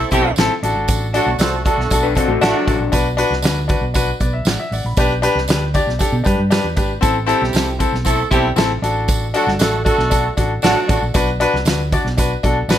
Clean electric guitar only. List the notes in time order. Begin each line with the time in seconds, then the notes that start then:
2.03 D4 B4
2.16 C4 A4
2.28 A3 F#4
2.41 E4
2.55 F#3 D4